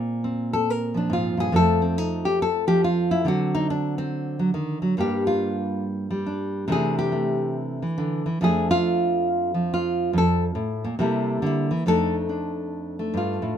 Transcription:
0.00 1.52 A#2 medium
0.00 0.24 G#3 soft
0.00 0.24 C4 medium
0.24 1.53 C4 soft
0.53 0.70 A4 medium
0.70 0.96 A#4 medium
0.94 1.50 F3 medium
0.94 1.11 D4 medium
1.10 1.37 G#2 medium
1.10 1.39 F4 medium
1.37 1.52 G2 medium
1.37 1.54 G#4 medium
1.52 3.24 F2 medium
1.52 2.66 F3 soft
1.52 3.23 A3 soft
1.52 1.81 C4 soft
1.52 1.82 A4 loud
1.82 1.98 C4 medium
1.98 2.25 D#4 medium
2.25 2.39 G4 medium
2.42 2.67 A4 medium
2.67 3.23 F3 medium
2.67 2.82 G4 loud
2.84 3.11 F4 medium
3.11 3.25 E4 medium
3.25 4.95 D3 medium
3.25 4.38 F#3 soft
3.25 3.97 C4 soft
3.25 3.55 F#4 medium
3.55 3.68 D#4 medium
3.70 3.97 D4 medium
3.98 4.40 C4 medium
4.39 4.54 F#3 medium
4.54 4.82 D#3 medium
4.82 4.97 F#3 medium
4.97 6.67 G2 medium
4.97 6.10 G3 soft
4.97 6.68 A#3 soft
4.97 6.26 D4 soft
4.97 5.27 G4 medium
5.27 5.84 F4 medium
6.11 6.68 G3 medium
6.26 6.69 D4 soft
6.68 7.83 C3 medium
6.68 7.81 E3 soft
6.68 7.12 A3 soft
6.68 8.42 D4 soft
6.72 6.98 G#4 medium
6.99 7.56 G4 medium
7.12 8.42 A3 soft
7.82 8.25 E3 medium
7.98 8.26 D3 medium
8.26 8.41 E3 medium
8.41 10.12 F2 medium
8.41 9.53 F3 soft
8.41 10.87 A3 soft
8.41 11.01 D4 soft
8.41 8.70 G#4 medium
8.71 9.28 F4 loud
9.54 10.11 F3 medium
9.74 10.15 F4 medium
10.13 10.55 F2 medium
10.18 10.44 A4 loud
10.55 10.84 A2 medium
10.84 10.98 A#2 medium
10.99 11.42 C3 medium
10.99 11.70 G3 medium
10.99 11.84 A#3 soft
10.99 11.43 E4 soft
10.99 11.85 A4 soft
11.42 11.71 D3 medium
11.46 11.87 E4 medium
11.71 11.85 E3 medium
11.86 13.13 F2 medium
11.86 12.98 A3 soft
11.86 12.29 D4 soft
11.86 13.57 D#4 soft
11.86 12.15 A4 loud
12.29 13.58 D4 soft
12.99 13.56 A3 medium
13.14 13.42 G2 medium
13.14 13.58 F4 medium
13.42 13.57 A2 medium

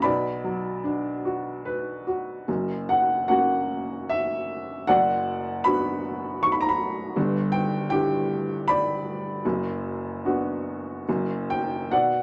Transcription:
0.02 2.44 B1 medium
0.02 2.44 B2 medium
0.02 2.03 D5 medium
0.02 2.02 B5 medium
0.44 2.03 F#3 medium
0.84 2.44 D4 medium
1.25 2.05 F#4 soft
1.65 2.45 B4 medium
2.07 2.47 F#4 soft
2.48 4.84 F#1 medium
2.48 4.84 F#2 medium
2.89 3.27 F#5 medium
3.28 4.84 A#3 soft
3.28 4.84 C#4 soft
3.28 4.84 F#4 soft
3.28 4.11 F#5 medium
4.09 4.90 E5 medium
4.87 7.13 F#1 medium
4.87 7.12 F#2 medium
4.87 5.99 D5 medium
4.87 5.67 F#5 medium
5.64 7.12 B3 medium
5.64 7.12 D4 soft
5.64 7.13 F#4 medium
5.64 6.40 B5 medium
6.43 6.52 C#6 medium
6.52 6.61 B5 medium
6.61 6.70 A#5 medium
6.69 6.78 B5 medium
7.16 9.40 G1 medium
7.16 9.40 G2 medium
7.52 7.88 G5 medium
7.90 9.40 D4 medium
7.90 9.40 E4 soft
7.90 9.40 G4 medium
7.90 8.69 G5 medium
8.68 11.04 D5 medium
8.68 11.03 B5 medium
9.45 11.04 F#1 medium
9.45 11.04 F#2 medium
10.25 11.05 B3 soft
10.25 11.05 D4 soft
10.25 11.06 F#4 medium
11.09 11.88 F#1 medium
11.09 11.89 F#2 medium
11.50 11.93 G5 medium
11.91 12.23 B2 medium
11.91 12.23 D5 medium
11.91 12.23 F#5 medium

